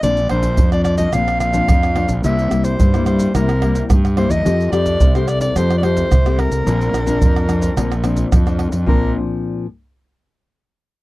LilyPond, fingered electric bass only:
\new Staff \with { instrumentName = "Fingered electric bass" } { \clef bass \time 4/4 \key bes \major \tempo 4 = 108 bes,,8 bes,,8 f,4 bes,,4 f,8. bes,,16 | c,8 c,8 g,4 c,4 g,8. e,16 | f,8 f,8 c,4 f,4 c,8. c,16 | bes,,8 bes,,8 f,4 bes,,4 f,8. f,16 |
bes,,8 r2. r8 | }